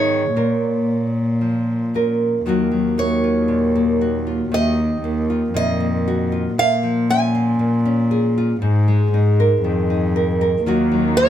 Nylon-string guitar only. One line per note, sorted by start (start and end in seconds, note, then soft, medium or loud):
0.00 0.29 G#2 medium
0.00 0.29 G#3 soft
0.00 0.29 B3 soft
0.00 0.30 D#4 soft
0.00 0.30 G#4 soft
0.36 2.39 A#2 medium
0.36 1.93 A#4 medium
1.41 2.39 F3 soft
1.94 2.39 C#4 soft
1.94 2.39 F4 soft
1.94 2.40 A#4 soft
2.46 4.50 D#3 medium
2.46 2.70 F#3 soft
2.46 2.97 A#3 soft
2.46 3.23 F4 soft
2.46 4.00 F#4 medium
2.71 4.77 F#3 soft
2.98 3.75 A#3 soft
3.24 4.26 F4 soft
3.48 4.51 A#2 medium
3.76 5.04 A#3 medium
4.01 6.06 F#4 soft
4.27 5.29 F4 soft
4.52 6.51 D#3 medium
5.04 5.80 A#3 soft
5.30 6.31 F4 soft
5.54 6.51 A#2 medium
5.80 7.09 A#3 soft
6.08 6.58 F#4 medium
6.32 6.51 F4 medium
6.58 7.58 A#2 medium
6.83 8.56 F3 medium
7.10 7.84 C#4 soft
7.35 8.36 F4 medium
7.59 8.56 A#2 medium
7.85 8.56 C#4 medium
8.11 8.56 G#4 medium
8.38 8.56 F4 soft
8.62 10.59 G#2 medium
8.88 10.59 G#3 medium
9.14 9.89 D#4 soft
9.40 10.15 A#4 medium
9.64 10.59 D#3 medium
9.90 10.60 D#4 soft
10.16 10.41 A#4 medium
10.41 10.68 A#4 medium
10.66 11.29 D#3 medium
10.66 10.90 F#3 medium
10.66 11.16 F4 medium
10.66 11.29 F#4 medium
10.92 11.29 F#3 medium
11.17 11.29 F4 soft